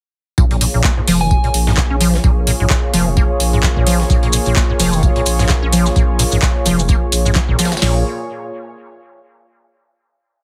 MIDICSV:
0, 0, Header, 1, 6, 480
1, 0, Start_track
1, 0, Key_signature, -5, "minor"
1, 0, Tempo, 465116
1, 390, Time_signature, 4, 2, 24, 8
1, 10768, End_track
2, 0, Start_track
2, 0, Title_t, "Synth bell"
2, 0, Program_c, 0, 98
2, 1246, Note_on_c, 0, 80, 85
2, 1591, Note_off_c, 0, 80, 0
2, 10768, End_track
3, 0, Start_track
3, 0, Title_t, "Analog synth pad"
3, 0, Program_c, 1, 89
3, 389, Note_on_c, 1, 68, 73
3, 391, Note_on_c, 1, 58, 80
3, 391, Note_on_c, 1, 65, 71
3, 391, Note_on_c, 1, 73, 88
3, 8029, Note_off_c, 1, 58, 0
3, 8029, Note_off_c, 1, 68, 0
3, 8029, Note_off_c, 1, 73, 0
3, 8030, Note_off_c, 1, 65, 0
3, 8068, Note_on_c, 1, 65, 63
3, 8068, Note_on_c, 1, 68, 66
3, 8069, Note_on_c, 1, 58, 69
3, 8069, Note_on_c, 1, 73, 79
3, 8292, Note_off_c, 1, 65, 0
3, 8292, Note_off_c, 1, 68, 0
3, 8293, Note_off_c, 1, 58, 0
3, 8293, Note_off_c, 1, 73, 0
3, 10768, End_track
4, 0, Start_track
4, 0, Title_t, "Acid bass"
4, 0, Program_c, 2, 38
4, 391, Note_on_c, 2, 46, 80
4, 465, Note_off_c, 2, 46, 0
4, 526, Note_on_c, 2, 46, 71
4, 583, Note_off_c, 2, 46, 0
4, 630, Note_on_c, 2, 46, 73
4, 674, Note_off_c, 2, 46, 0
4, 764, Note_on_c, 2, 46, 74
4, 852, Note_off_c, 2, 46, 0
4, 871, Note_on_c, 2, 58, 81
4, 944, Note_off_c, 2, 58, 0
4, 1005, Note_on_c, 2, 44, 75
4, 1040, Note_off_c, 2, 44, 0
4, 1111, Note_on_c, 2, 53, 96
4, 1246, Note_on_c, 2, 51, 98
4, 1261, Note_off_c, 2, 53, 0
4, 1351, Note_on_c, 2, 46, 80
4, 1367, Note_off_c, 2, 51, 0
4, 1425, Note_off_c, 2, 46, 0
4, 1485, Note_on_c, 2, 46, 73
4, 1543, Note_off_c, 2, 46, 0
4, 1726, Note_on_c, 2, 44, 71
4, 1784, Note_off_c, 2, 44, 0
4, 1831, Note_on_c, 2, 46, 78
4, 1875, Note_off_c, 2, 46, 0
4, 1965, Note_on_c, 2, 61, 77
4, 2023, Note_off_c, 2, 61, 0
4, 2070, Note_on_c, 2, 53, 99
4, 2205, Note_on_c, 2, 51, 99
4, 2220, Note_off_c, 2, 53, 0
4, 2240, Note_off_c, 2, 51, 0
4, 2309, Note_on_c, 2, 46, 81
4, 2384, Note_off_c, 2, 46, 0
4, 2550, Note_on_c, 2, 46, 99
4, 2594, Note_off_c, 2, 46, 0
4, 2684, Note_on_c, 2, 44, 77
4, 2743, Note_off_c, 2, 44, 0
4, 2789, Note_on_c, 2, 46, 81
4, 2834, Note_off_c, 2, 46, 0
4, 3030, Note_on_c, 2, 53, 97
4, 3165, Note_on_c, 2, 51, 97
4, 3180, Note_off_c, 2, 53, 0
4, 3200, Note_off_c, 2, 51, 0
4, 3271, Note_on_c, 2, 58, 78
4, 3345, Note_off_c, 2, 58, 0
4, 3645, Note_on_c, 2, 44, 75
4, 3703, Note_off_c, 2, 44, 0
4, 3750, Note_on_c, 2, 53, 97
4, 3794, Note_off_c, 2, 53, 0
4, 3884, Note_on_c, 2, 46, 77
4, 3972, Note_off_c, 2, 46, 0
4, 3989, Note_on_c, 2, 53, 101
4, 4125, Note_on_c, 2, 51, 99
4, 4141, Note_off_c, 2, 53, 0
4, 4160, Note_off_c, 2, 51, 0
4, 4230, Note_on_c, 2, 46, 84
4, 4304, Note_off_c, 2, 46, 0
4, 4365, Note_on_c, 2, 46, 72
4, 4423, Note_off_c, 2, 46, 0
4, 4471, Note_on_c, 2, 46, 75
4, 4515, Note_off_c, 2, 46, 0
4, 4605, Note_on_c, 2, 46, 76
4, 4692, Note_off_c, 2, 46, 0
4, 4710, Note_on_c, 2, 58, 82
4, 4784, Note_off_c, 2, 58, 0
4, 4845, Note_on_c, 2, 44, 73
4, 4880, Note_off_c, 2, 44, 0
4, 4949, Note_on_c, 2, 53, 100
4, 5084, Note_on_c, 2, 51, 96
4, 5099, Note_off_c, 2, 53, 0
4, 5190, Note_on_c, 2, 46, 84
4, 5205, Note_off_c, 2, 51, 0
4, 5264, Note_off_c, 2, 46, 0
4, 5323, Note_on_c, 2, 46, 80
4, 5382, Note_off_c, 2, 46, 0
4, 5564, Note_on_c, 2, 44, 76
4, 5622, Note_off_c, 2, 44, 0
4, 5670, Note_on_c, 2, 46, 80
4, 5715, Note_off_c, 2, 46, 0
4, 5804, Note_on_c, 2, 61, 76
4, 5863, Note_off_c, 2, 61, 0
4, 5910, Note_on_c, 2, 53, 100
4, 6044, Note_on_c, 2, 51, 99
4, 6059, Note_off_c, 2, 53, 0
4, 6079, Note_off_c, 2, 51, 0
4, 6149, Note_on_c, 2, 46, 84
4, 6223, Note_off_c, 2, 46, 0
4, 6390, Note_on_c, 2, 46, 99
4, 6435, Note_off_c, 2, 46, 0
4, 6525, Note_on_c, 2, 44, 77
4, 6583, Note_off_c, 2, 44, 0
4, 6631, Note_on_c, 2, 46, 81
4, 6675, Note_off_c, 2, 46, 0
4, 6871, Note_on_c, 2, 53, 97
4, 7006, Note_on_c, 2, 51, 99
4, 7022, Note_off_c, 2, 53, 0
4, 7040, Note_off_c, 2, 51, 0
4, 7112, Note_on_c, 2, 58, 82
4, 7185, Note_off_c, 2, 58, 0
4, 7486, Note_on_c, 2, 44, 74
4, 7543, Note_off_c, 2, 44, 0
4, 7592, Note_on_c, 2, 53, 101
4, 7635, Note_off_c, 2, 53, 0
4, 7726, Note_on_c, 2, 46, 75
4, 7812, Note_off_c, 2, 46, 0
4, 7832, Note_on_c, 2, 53, 101
4, 7966, Note_on_c, 2, 51, 99
4, 7982, Note_off_c, 2, 53, 0
4, 8000, Note_off_c, 2, 51, 0
4, 8071, Note_on_c, 2, 46, 95
4, 8294, Note_off_c, 2, 46, 0
4, 10768, End_track
5, 0, Start_track
5, 0, Title_t, "Sub bass"
5, 0, Program_c, 3, 38
5, 391, Note_on_c, 3, 34, 97
5, 698, Note_off_c, 3, 34, 0
5, 765, Note_on_c, 3, 34, 90
5, 837, Note_off_c, 3, 34, 0
5, 1110, Note_on_c, 3, 29, 86
5, 1417, Note_off_c, 3, 29, 0
5, 1591, Note_on_c, 3, 34, 76
5, 1898, Note_off_c, 3, 34, 0
5, 1966, Note_on_c, 3, 34, 77
5, 2258, Note_off_c, 3, 34, 0
5, 2311, Note_on_c, 3, 34, 98
5, 2618, Note_off_c, 3, 34, 0
5, 2684, Note_on_c, 3, 34, 87
5, 2757, Note_off_c, 3, 34, 0
5, 3030, Note_on_c, 3, 29, 88
5, 3337, Note_off_c, 3, 29, 0
5, 3510, Note_on_c, 3, 34, 80
5, 3817, Note_off_c, 3, 34, 0
5, 3885, Note_on_c, 3, 34, 80
5, 4178, Note_off_c, 3, 34, 0
5, 4231, Note_on_c, 3, 34, 99
5, 4538, Note_off_c, 3, 34, 0
5, 4605, Note_on_c, 3, 34, 91
5, 4677, Note_off_c, 3, 34, 0
5, 4950, Note_on_c, 3, 29, 90
5, 5257, Note_off_c, 3, 29, 0
5, 5431, Note_on_c, 3, 34, 79
5, 5738, Note_off_c, 3, 34, 0
5, 5805, Note_on_c, 3, 34, 79
5, 6097, Note_off_c, 3, 34, 0
5, 6151, Note_on_c, 3, 34, 103
5, 6458, Note_off_c, 3, 34, 0
5, 6525, Note_on_c, 3, 34, 89
5, 6597, Note_off_c, 3, 34, 0
5, 6871, Note_on_c, 3, 29, 91
5, 7178, Note_off_c, 3, 29, 0
5, 7351, Note_on_c, 3, 34, 78
5, 7658, Note_off_c, 3, 34, 0
5, 7726, Note_on_c, 3, 32, 87
5, 7798, Note_off_c, 3, 32, 0
5, 8073, Note_on_c, 3, 34, 97
5, 8295, Note_off_c, 3, 34, 0
5, 10768, End_track
6, 0, Start_track
6, 0, Title_t, "Drums"
6, 390, Note_on_c, 9, 54, 81
6, 391, Note_on_c, 9, 36, 112
6, 493, Note_off_c, 9, 54, 0
6, 494, Note_off_c, 9, 36, 0
6, 524, Note_on_c, 9, 42, 40
6, 628, Note_off_c, 9, 42, 0
6, 630, Note_on_c, 9, 46, 100
6, 630, Note_on_c, 9, 54, 65
6, 733, Note_off_c, 9, 46, 0
6, 733, Note_off_c, 9, 54, 0
6, 867, Note_on_c, 9, 39, 114
6, 870, Note_on_c, 9, 38, 102
6, 870, Note_on_c, 9, 54, 80
6, 871, Note_on_c, 9, 36, 108
6, 970, Note_off_c, 9, 39, 0
6, 973, Note_off_c, 9, 38, 0
6, 973, Note_off_c, 9, 54, 0
6, 974, Note_off_c, 9, 36, 0
6, 1110, Note_on_c, 9, 46, 76
6, 1213, Note_off_c, 9, 46, 0
6, 1351, Note_on_c, 9, 36, 111
6, 1351, Note_on_c, 9, 54, 82
6, 1454, Note_off_c, 9, 36, 0
6, 1454, Note_off_c, 9, 54, 0
6, 1485, Note_on_c, 9, 42, 40
6, 1589, Note_off_c, 9, 42, 0
6, 1590, Note_on_c, 9, 46, 96
6, 1590, Note_on_c, 9, 54, 64
6, 1693, Note_off_c, 9, 46, 0
6, 1694, Note_off_c, 9, 54, 0
6, 1725, Note_on_c, 9, 38, 54
6, 1827, Note_on_c, 9, 39, 117
6, 1828, Note_off_c, 9, 38, 0
6, 1830, Note_on_c, 9, 38, 105
6, 1830, Note_on_c, 9, 54, 80
6, 1831, Note_on_c, 9, 36, 111
6, 1931, Note_off_c, 9, 39, 0
6, 1934, Note_off_c, 9, 36, 0
6, 1934, Note_off_c, 9, 38, 0
6, 1934, Note_off_c, 9, 54, 0
6, 2070, Note_on_c, 9, 46, 100
6, 2070, Note_on_c, 9, 54, 65
6, 2173, Note_off_c, 9, 46, 0
6, 2174, Note_off_c, 9, 54, 0
6, 2205, Note_on_c, 9, 38, 37
6, 2308, Note_off_c, 9, 38, 0
6, 2310, Note_on_c, 9, 54, 81
6, 2311, Note_on_c, 9, 36, 117
6, 2413, Note_off_c, 9, 54, 0
6, 2414, Note_off_c, 9, 36, 0
6, 2549, Note_on_c, 9, 46, 102
6, 2550, Note_on_c, 9, 54, 66
6, 2652, Note_off_c, 9, 46, 0
6, 2653, Note_off_c, 9, 54, 0
6, 2786, Note_on_c, 9, 39, 116
6, 2790, Note_on_c, 9, 38, 106
6, 2790, Note_on_c, 9, 54, 81
6, 2791, Note_on_c, 9, 36, 117
6, 2889, Note_off_c, 9, 39, 0
6, 2893, Note_off_c, 9, 38, 0
6, 2893, Note_off_c, 9, 54, 0
6, 2894, Note_off_c, 9, 36, 0
6, 3030, Note_on_c, 9, 38, 40
6, 3030, Note_on_c, 9, 46, 103
6, 3030, Note_on_c, 9, 54, 67
6, 3133, Note_off_c, 9, 38, 0
6, 3133, Note_off_c, 9, 46, 0
6, 3133, Note_off_c, 9, 54, 0
6, 3269, Note_on_c, 9, 54, 82
6, 3271, Note_on_c, 9, 36, 115
6, 3372, Note_off_c, 9, 54, 0
6, 3374, Note_off_c, 9, 36, 0
6, 3509, Note_on_c, 9, 46, 101
6, 3509, Note_on_c, 9, 54, 66
6, 3612, Note_off_c, 9, 46, 0
6, 3613, Note_off_c, 9, 54, 0
6, 3747, Note_on_c, 9, 39, 120
6, 3749, Note_on_c, 9, 38, 107
6, 3749, Note_on_c, 9, 54, 81
6, 3751, Note_on_c, 9, 36, 114
6, 3850, Note_off_c, 9, 39, 0
6, 3852, Note_off_c, 9, 38, 0
6, 3852, Note_off_c, 9, 54, 0
6, 3854, Note_off_c, 9, 36, 0
6, 3885, Note_on_c, 9, 36, 61
6, 3988, Note_off_c, 9, 36, 0
6, 3989, Note_on_c, 9, 54, 65
6, 3990, Note_on_c, 9, 46, 106
6, 4093, Note_off_c, 9, 46, 0
6, 4093, Note_off_c, 9, 54, 0
6, 4124, Note_on_c, 9, 38, 46
6, 4227, Note_off_c, 9, 38, 0
6, 4229, Note_on_c, 9, 54, 82
6, 4231, Note_on_c, 9, 36, 121
6, 4234, Note_on_c, 9, 70, 39
6, 4333, Note_off_c, 9, 54, 0
6, 4334, Note_off_c, 9, 36, 0
6, 4337, Note_off_c, 9, 70, 0
6, 4364, Note_on_c, 9, 42, 42
6, 4466, Note_on_c, 9, 70, 89
6, 4467, Note_off_c, 9, 42, 0
6, 4470, Note_on_c, 9, 46, 108
6, 4470, Note_on_c, 9, 54, 68
6, 4569, Note_off_c, 9, 70, 0
6, 4573, Note_off_c, 9, 46, 0
6, 4573, Note_off_c, 9, 54, 0
6, 4599, Note_on_c, 9, 70, 52
6, 4702, Note_off_c, 9, 70, 0
6, 4707, Note_on_c, 9, 39, 116
6, 4709, Note_on_c, 9, 38, 107
6, 4709, Note_on_c, 9, 54, 86
6, 4711, Note_on_c, 9, 36, 121
6, 4714, Note_on_c, 9, 70, 43
6, 4810, Note_off_c, 9, 39, 0
6, 4812, Note_off_c, 9, 38, 0
6, 4812, Note_off_c, 9, 54, 0
6, 4814, Note_off_c, 9, 36, 0
6, 4817, Note_off_c, 9, 70, 0
6, 4949, Note_on_c, 9, 46, 77
6, 4951, Note_on_c, 9, 70, 87
6, 5053, Note_off_c, 9, 46, 0
6, 5054, Note_off_c, 9, 70, 0
6, 5087, Note_on_c, 9, 70, 51
6, 5190, Note_off_c, 9, 70, 0
6, 5190, Note_on_c, 9, 54, 84
6, 5191, Note_on_c, 9, 36, 120
6, 5191, Note_on_c, 9, 70, 38
6, 5293, Note_off_c, 9, 54, 0
6, 5294, Note_off_c, 9, 36, 0
6, 5294, Note_off_c, 9, 70, 0
6, 5325, Note_on_c, 9, 42, 42
6, 5427, Note_on_c, 9, 70, 92
6, 5428, Note_off_c, 9, 42, 0
6, 5429, Note_on_c, 9, 46, 105
6, 5430, Note_on_c, 9, 54, 68
6, 5531, Note_off_c, 9, 70, 0
6, 5533, Note_off_c, 9, 46, 0
6, 5533, Note_off_c, 9, 54, 0
6, 5564, Note_on_c, 9, 38, 55
6, 5566, Note_on_c, 9, 70, 48
6, 5666, Note_on_c, 9, 39, 120
6, 5668, Note_off_c, 9, 38, 0
6, 5669, Note_off_c, 9, 70, 0
6, 5670, Note_on_c, 9, 38, 108
6, 5670, Note_on_c, 9, 54, 81
6, 5671, Note_on_c, 9, 36, 118
6, 5671, Note_on_c, 9, 70, 41
6, 5769, Note_off_c, 9, 39, 0
6, 5773, Note_off_c, 9, 38, 0
6, 5773, Note_off_c, 9, 54, 0
6, 5774, Note_off_c, 9, 36, 0
6, 5775, Note_off_c, 9, 70, 0
6, 5909, Note_on_c, 9, 46, 111
6, 5910, Note_on_c, 9, 54, 69
6, 5913, Note_on_c, 9, 70, 97
6, 6012, Note_off_c, 9, 46, 0
6, 6013, Note_off_c, 9, 54, 0
6, 6016, Note_off_c, 9, 70, 0
6, 6045, Note_on_c, 9, 38, 38
6, 6048, Note_on_c, 9, 70, 54
6, 6148, Note_off_c, 9, 38, 0
6, 6151, Note_on_c, 9, 36, 119
6, 6151, Note_on_c, 9, 54, 84
6, 6152, Note_off_c, 9, 70, 0
6, 6153, Note_on_c, 9, 70, 37
6, 6254, Note_off_c, 9, 36, 0
6, 6254, Note_off_c, 9, 54, 0
6, 6256, Note_off_c, 9, 70, 0
6, 6390, Note_on_c, 9, 46, 106
6, 6390, Note_on_c, 9, 54, 70
6, 6392, Note_on_c, 9, 70, 86
6, 6493, Note_off_c, 9, 46, 0
6, 6493, Note_off_c, 9, 54, 0
6, 6496, Note_off_c, 9, 70, 0
6, 6519, Note_on_c, 9, 70, 51
6, 6622, Note_off_c, 9, 70, 0
6, 6627, Note_on_c, 9, 39, 112
6, 6630, Note_on_c, 9, 38, 110
6, 6630, Note_on_c, 9, 54, 84
6, 6631, Note_on_c, 9, 36, 120
6, 6635, Note_on_c, 9, 70, 41
6, 6730, Note_off_c, 9, 39, 0
6, 6733, Note_off_c, 9, 38, 0
6, 6733, Note_off_c, 9, 54, 0
6, 6734, Note_off_c, 9, 36, 0
6, 6739, Note_off_c, 9, 70, 0
6, 6870, Note_on_c, 9, 38, 41
6, 6870, Note_on_c, 9, 46, 103
6, 6870, Note_on_c, 9, 54, 69
6, 6870, Note_on_c, 9, 70, 87
6, 6973, Note_off_c, 9, 38, 0
6, 6973, Note_off_c, 9, 46, 0
6, 6973, Note_off_c, 9, 54, 0
6, 6974, Note_off_c, 9, 70, 0
6, 7009, Note_on_c, 9, 70, 54
6, 7105, Note_off_c, 9, 70, 0
6, 7105, Note_on_c, 9, 70, 38
6, 7110, Note_on_c, 9, 54, 88
6, 7111, Note_on_c, 9, 36, 119
6, 7208, Note_off_c, 9, 70, 0
6, 7213, Note_off_c, 9, 54, 0
6, 7214, Note_off_c, 9, 36, 0
6, 7350, Note_on_c, 9, 46, 105
6, 7350, Note_on_c, 9, 54, 69
6, 7355, Note_on_c, 9, 70, 95
6, 7453, Note_off_c, 9, 46, 0
6, 7453, Note_off_c, 9, 54, 0
6, 7458, Note_off_c, 9, 70, 0
6, 7491, Note_on_c, 9, 70, 50
6, 7587, Note_on_c, 9, 39, 113
6, 7590, Note_on_c, 9, 38, 114
6, 7590, Note_on_c, 9, 54, 85
6, 7591, Note_off_c, 9, 70, 0
6, 7591, Note_on_c, 9, 36, 120
6, 7591, Note_on_c, 9, 70, 42
6, 7691, Note_off_c, 9, 39, 0
6, 7693, Note_off_c, 9, 38, 0
6, 7693, Note_off_c, 9, 54, 0
6, 7694, Note_off_c, 9, 36, 0
6, 7694, Note_off_c, 9, 70, 0
6, 7726, Note_on_c, 9, 36, 62
6, 7829, Note_off_c, 9, 36, 0
6, 7830, Note_on_c, 9, 38, 88
6, 7830, Note_on_c, 9, 54, 69
6, 7831, Note_on_c, 9, 46, 109
6, 7834, Note_on_c, 9, 70, 100
6, 7897, Note_off_c, 9, 38, 0
6, 7897, Note_off_c, 9, 54, 0
6, 7897, Note_on_c, 9, 38, 90
6, 7897, Note_on_c, 9, 54, 69
6, 7934, Note_off_c, 9, 46, 0
6, 7937, Note_off_c, 9, 70, 0
6, 7965, Note_off_c, 9, 38, 0
6, 7965, Note_off_c, 9, 54, 0
6, 7965, Note_on_c, 9, 38, 87
6, 7965, Note_on_c, 9, 54, 66
6, 7969, Note_on_c, 9, 70, 52
6, 8018, Note_off_c, 9, 38, 0
6, 8018, Note_off_c, 9, 54, 0
6, 8018, Note_on_c, 9, 38, 87
6, 8018, Note_on_c, 9, 54, 67
6, 8071, Note_off_c, 9, 38, 0
6, 8071, Note_on_c, 9, 38, 104
6, 8071, Note_on_c, 9, 46, 88
6, 8073, Note_off_c, 9, 70, 0
6, 8121, Note_off_c, 9, 54, 0
6, 8174, Note_off_c, 9, 38, 0
6, 8174, Note_off_c, 9, 46, 0
6, 10768, End_track
0, 0, End_of_file